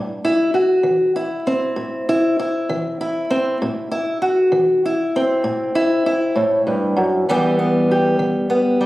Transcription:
0.00 0.48 A2 medium
0.25 0.54 E4 medium
0.54 1.15 F#4 soft
0.83 1.39 E3 medium
1.16 2.09 E4 medium
1.47 3.29 C4 medium
1.76 2.31 A2 medium
2.09 2.39 E4 medium
2.39 3.00 E4 medium
2.69 3.24 E3 medium
3.01 3.91 E4 medium
3.30 3.57 C4 medium
3.62 4.16 A2 medium
3.91 4.21 E4 medium
4.22 4.83 F#4 soft
4.52 5.07 E3 medium
4.85 5.75 E4 medium
5.16 7.25 C4 medium
5.44 5.99 A2 medium
5.75 6.06 E4 medium
6.06 7.30 E4 medium
6.36 6.66 A2 medium
6.67 6.97 G2 medium
6.97 7.27 F#2 medium
7.29 7.83 E2 medium
7.29 8.19 E3 medium
7.29 8.80 G3 medium
7.29 7.59 B3 medium
7.29 7.91 G4 medium
7.59 8.49 B3 medium
7.91 8.86 G4 medium
8.19 8.74 E3 medium
8.50 8.86 B3 medium
8.81 8.86 G3 medium

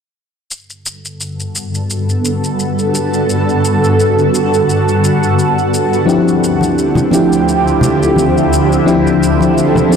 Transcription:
0.50 5.69 G2 medium
0.50 5.70 D3 medium
0.50 5.70 B3 medium
0.50 5.69 F#4 medium
0.50 5.69 A4 medium
0.50 shaker soft
0.70 shaker soft
0.86 shaker medium
1.05 shaker soft
1.21 shaker soft
1.40 shaker soft
1.56 shaker medium
1.75 shaker soft
1.90 shaker soft
2.09 shaker soft
2.25 shaker medium
2.44 shaker soft
2.60 shaker soft
2.79 shaker soft
2.95 shaker medium
3.14 shaker soft
3.30 shaker soft
3.49 shaker soft
3.65 shaker medium
3.84 shaker soft
4.00 shaker soft
4.19 shaker soft
4.35 shaker medium
4.54 shaker soft
4.70 shaker soft
4.89 shaker soft
5.04 shaker medium
5.23 shaker soft
5.39 shaker soft
5.58 shaker soft
5.72 9.96 D2 medium
5.72 9.96 D3 medium
5.72 9.96 F3 medium
5.72 9.96 C4 medium
5.72 9.96 E4 medium
5.72 8.49 G4 medium
5.72 shaker medium
5.93 shaker soft
6.06 7.08 F3 medium
6.06 7.08 C4 medium
6.06 7.09 D4 medium
6.06 7.09 E4 medium
6.06 7.09 G4 loud
6.06 shaker soft
6.28 shaker soft
6.44 shaker medium
6.61 high conga soft
6.61 shaker soft
6.79 shaker soft
6.95 high conga medium
6.95 low conga medium
6.95 shaker soft
7.10 8.82 F3 medium
7.10 8.83 C4 medium
7.10 8.83 D4 medium
7.10 8.83 E4 medium
7.10 8.84 G4 medium
7.10 high conga medium
7.10 shaker medium
7.33 shaker soft
7.49 shaker soft
7.68 shaker soft
7.81 low conga medium
7.81 shaker medium
8.03 shaker soft
8.16 high conga medium
8.16 shaker soft
8.38 shaker soft
8.52 9.96 A4 medium
8.52 shaker medium
8.72 shaker soft
8.85 9.87 F3 medium
8.85 9.87 C4 medium
8.85 9.88 D4 medium
8.85 9.88 E4 medium
8.85 9.89 G4 loud
8.85 shaker soft
9.07 shaker soft
9.23 shaker medium
9.41 high conga soft
9.41 shaker soft
9.58 shaker soft
9.75 high conga medium
9.75 low conga medium
9.75 shaker soft
9.89 9.96 F3 medium
9.89 9.96 C4 medium
9.89 9.96 D4 medium
9.89 9.96 E4 medium
9.89 9.96 G4 medium
9.89 shaker medium

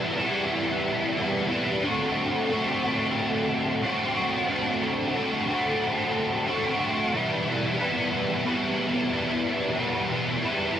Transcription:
0.00 0.18 E2 medium
0.00 0.18 B2 medium
0.00 0.20 E3 medium
0.00 0.19 G3 medium
0.00 0.18 B3 medium
0.00 0.17 E4 medium
0.18 1.16 E3 medium
0.18 1.17 G3 medium
0.18 1.18 B3 medium
0.18 1.19 E4 medium
1.17 1.52 E3 medium
1.17 1.51 G3 medium
1.17 1.50 B3 medium
1.17 1.48 E4 medium
1.49 1.83 E3 medium
1.49 1.83 G3 medium
1.49 1.82 B3 medium
1.49 1.81 E4 medium
1.83 2.49 D3 loud
1.83 2.50 A3 medium
1.83 2.51 C4 loud
1.83 2.52 F#4 loud
2.49 3.82 D3 medium
2.49 2.86 A3 medium
2.49 2.85 C4 medium
2.49 2.83 F#4 medium
2.83 3.83 A3 medium
2.83 3.84 C4 medium
2.83 3.85 F#4 medium
3.83 4.47 D3 medium
3.83 4.18 A3 medium
3.83 4.17 C4 medium
3.83 4.15 F#4 medium
4.16 4.49 A3 medium
4.16 4.49 C4 medium
4.16 4.51 F#4 medium
4.48 5.13 D3 loud
4.48 5.14 A3 loud
4.48 5.16 C4 loud
4.48 5.16 F#4 loud
5.14 5.81 D3 medium
5.14 5.50 A3 medium
5.14 5.49 C4 medium
5.14 5.47 F#4 medium
5.48 6.46 A3 medium
5.48 6.48 C4 medium
5.48 6.48 F#4 medium
6.46 7.11 D3 medium
6.46 6.82 A3 medium
6.46 6.81 C4 medium
6.46 6.79 F#4 medium
6.80 7.13 A3 medium
6.80 7.12 C4 medium
6.80 7.11 F#4 medium
7.13 8.43 E2 loud
7.13 7.79 B2 loud
7.13 7.49 E3 loud
7.13 7.48 G3 loud
7.13 7.47 B3 loud
7.13 7.45 E4 loud
7.46 7.78 E3 medium
7.46 7.79 G3 medium
7.46 7.80 B3 medium
7.46 7.81 E4 medium
7.78 8.44 E3 medium
7.78 8.45 G3 medium
7.78 8.46 B3 medium
7.78 8.46 E4 medium
8.44 9.43 E2 loud
8.44 9.44 B2 loud
8.44 9.10 E3 medium
8.44 9.12 G3 loud
8.44 9.13 B3 loud
8.44 9.14 E4 loud
9.11 9.77 E3 medium
9.11 9.77 G3 medium
9.11 9.79 B3 medium
9.11 9.78 E4 medium
9.76 10.43 E2 loud
9.76 10.43 B2 loud
9.76 10.11 E3 loud
9.76 10.10 G3 loud
9.76 10.10 B3 loud
9.76 10.08 E4 loud
10.09 10.41 E3 medium
10.09 10.42 G3 medium
10.09 10.44 B3 medium
10.09 10.44 E4 medium
10.42 10.80 E3 medium
10.42 10.80 G3 medium
10.42 10.80 B3 medium
10.42 10.80 E4 medium

